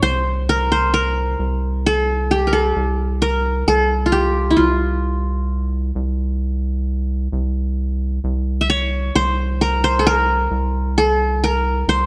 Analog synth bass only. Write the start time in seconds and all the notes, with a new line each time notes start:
0.02 C2
1.39 C2
2.76 C2
3.68 C2
4.59 C2
5.95 C2
7.32 C2
8.24 C2
9.16 C2
10.51 C2
11.88 C2